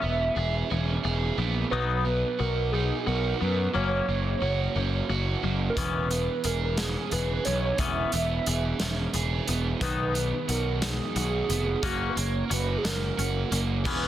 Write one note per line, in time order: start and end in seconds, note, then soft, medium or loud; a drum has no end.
0.00 0.29 E1 medium
0.00 0.33 E3 medium
0.00 1.36 B3 medium
0.00 0.33 B3 medium
0.00 0.37 C#4 medium
0.00 0.35 G#4 medium
0.00 1.05 E5 loud
0.36 0.62 E1 medium
0.36 0.67 E3 medium
0.36 0.68 B3 medium
0.36 1.03 G#4 medium
0.70 0.97 E1 medium
0.70 1.01 E3 medium
0.70 1.01 B3 medium
0.70 1.72 C#4 medium
1.04 1.30 E1 medium
1.04 1.35 E3 medium
1.04 1.35 B3 medium
1.04 1.72 G#4 medium
1.38 1.63 A#1 medium
1.38 1.68 E3 medium
1.38 1.72 B3 medium
1.38 1.69 B3 medium
1.71 2.23 B1 medium
1.71 3.40 F#3 medium
1.71 2.03 F#3 medium
1.71 2.04 B3 medium
1.71 2.04 D#4 loud
1.71 2.42 B4 loud
2.05 2.36 F#3 medium
2.05 3.39 B3 medium
2.05 2.37 B3 medium
2.39 2.91 B1 medium
2.39 2.70 F#3 medium
2.39 2.70 B3 medium
2.39 3.06 F#4 medium
2.39 2.73 A#4 medium
2.72 3.03 F#3 medium
2.72 3.04 B3 medium
2.72 3.75 D#4 medium
2.72 3.09 G#4 medium
3.06 3.33 B1 medium
3.06 3.37 F#3 medium
3.06 3.37 B3 medium
3.06 3.74 F#4 medium
3.06 3.44 A#4 medium
3.41 3.67 F#2 medium
3.41 3.71 F#3 medium
3.41 3.74 B3 medium
3.41 3.71 B3 medium
3.41 3.75 B4 loud
3.74 4.00 F#1 medium
3.74 4.06 F#3 medium
3.74 5.43 F#3 medium
3.74 4.06 A#3 loud
3.74 4.06 C#4 medium
3.74 5.06 C#5 loud
4.08 4.34 F#1 medium
4.08 4.39 F#3 medium
4.08 5.42 A#3 medium
4.08 4.39 A#3 medium
4.42 4.67 F#1 medium
4.42 4.72 F#3 medium
4.42 4.72 A#3 medium
4.42 5.09 F#4 medium
4.76 5.01 F#1 medium
4.76 5.06 F#3 medium
4.76 5.07 A#3 medium
4.76 6.14 C#4 medium
5.10 5.35 F#1 medium
5.10 5.40 F#3 medium
5.10 5.40 A#3 medium
5.10 5.77 F#4 medium
5.43 5.69 F#1 medium
5.43 5.73 F#3 medium
5.43 5.77 A#3 medium
5.43 5.74 A#3 medium
5.70 5.78 A#4 medium
5.77 6.27 E1 medium
5.77 7.45 E3 medium
5.77 6.08 E3 medium
5.77 6.09 B3 medium
5.77 6.09 C#4 loud
5.77 6.46 B4 loud
5.77 kick medium
5.77 closed hi-hat medium
6.11 6.41 E3 medium
6.11 6.41 B3 medium
6.11 7.45 B3 medium
6.11 closed hi-hat medium
6.44 6.95 E1 medium
6.44 6.75 E3 medium
6.44 6.75 B3 medium
6.44 7.11 G#4 medium
6.44 6.80 A#4 medium
6.44 closed hi-hat medium
6.78 7.08 E3 medium
6.78 7.09 B3 medium
6.78 8.47 C#4 medium
6.78 7.14 G#4 medium
6.78 snare loud
6.78 closed hi-hat medium
7.11 7.37 E1 medium
7.11 7.42 E3 medium
7.11 7.42 B3 medium
7.11 8.46 G#4 medium
7.11 7.45 B4 medium
7.11 closed hi-hat medium
7.45 7.71 B1 medium
7.45 7.76 E3 medium
7.45 8.11 B3 medium
7.45 7.76 B3 medium
7.45 7.80 C#5 medium
7.45 closed hi-hat medium
7.78 8.04 E1 medium
7.78 9.47 E3 medium
7.78 8.11 E3 medium
7.78 8.11 B3 medium
7.78 8.11 C#4 medium
7.78 9.13 E5 loud
7.78 kick medium
7.78 closed hi-hat medium
8.12 8.38 E1 medium
8.12 8.43 E3 medium
8.12 9.46 B3 medium
8.12 8.43 B3 medium
8.12 closed hi-hat medium
8.46 8.72 E1 medium
8.46 8.77 E3 medium
8.46 8.77 B3 medium
8.46 9.13 G#4 medium
8.46 closed hi-hat medium
8.80 9.06 E1 medium
8.80 9.11 E3 medium
8.80 9.11 B3 medium
8.80 9.81 C#4 medium
8.80 snare loud
8.80 closed hi-hat medium
9.14 9.39 E1 medium
9.14 9.44 E3 medium
9.14 9.44 B3 medium
9.14 9.81 G#4 medium
9.14 closed hi-hat medium
9.47 9.73 E1 medium
9.47 9.78 E3 medium
9.47 9.81 B3 medium
9.47 9.78 B3 medium
9.47 closed hi-hat medium
9.81 10.32 B1 medium
9.81 11.49 D#3 medium
9.81 10.13 D#3 medium
9.81 10.13 B3 medium
9.81 10.14 D#4 medium
9.81 10.52 B4 loud
9.81 kick loud
9.81 closed hi-hat medium
10.14 10.46 D#3 medium
10.14 11.49 B3 medium
10.14 10.46 B3 medium
10.14 closed hi-hat medium
10.48 10.99 B1 medium
10.48 10.79 D#3 medium
10.48 10.79 B3 medium
10.48 11.14 F#4 medium
10.48 10.86 A#4 medium
10.48 closed hi-hat medium
10.82 11.12 D#3 medium
10.82 11.13 B3 medium
10.82 11.83 D#4 medium
10.82 11.87 G#4 medium
10.82 snare loud
10.82 closed hi-hat medium
11.16 11.41 B1 medium
11.16 11.46 D#3 medium
11.16 11.46 B3 medium
11.16 11.83 F#4 medium
11.16 closed hi-hat medium
11.49 11.75 F1 medium
11.49 11.80 D#3 medium
11.49 11.82 B3 medium
11.49 11.80 B3 medium
11.49 closed hi-hat medium
11.82 12.08 F#1 medium
11.82 12.14 A#3 medium
11.82 12.15 A#3 medium
11.82 12.15 C#4 medium
11.82 12.15 F#4 loud
11.82 12.10 F#4 loud
11.82 kick loud
11.82 closed hi-hat medium
12.09 12.20 B4 medium
12.15 12.42 F#1 medium
12.15 13.50 A#3 medium
12.15 12.47 A#3 medium
12.15 12.47 C#4 medium
12.15 12.46 C#5 medium
12.15 closed hi-hat medium
12.45 12.54 A#4 medium
12.49 12.76 F#1 medium
12.49 12.81 A#3 medium
12.49 12.81 C#4 medium
12.49 13.16 F#4 medium
12.49 12.79 B4 loud
12.49 closed hi-hat medium
12.78 12.87 G#4 medium
12.83 13.10 F#1 medium
12.83 13.15 A#3 medium
12.83 13.84 C#4 medium
12.83 13.15 C#4 medium
12.83 13.61 A#4 loud
12.83 snare loud
12.83 closed hi-hat medium
13.17 13.43 F#1 medium
13.17 13.48 A#3 medium
13.17 13.49 C#4 medium
13.17 13.85 F#4 medium
13.17 closed hi-hat medium
13.51 13.86 F#1 medium
13.51 13.84 A#3 medium
13.51 13.82 A#3 medium
13.51 13.82 C#4 medium
13.51 closed hi-hat medium
13.84 14.08 E1 medium
13.84 14.08 E3 medium
13.84 14.08 B3 medium
13.84 14.08 C#4 medium
13.84 14.08 E4 medium
13.84 14.08 G#4 medium
13.84 14.08 B4 loud
13.84 kick loud
13.84 crash loud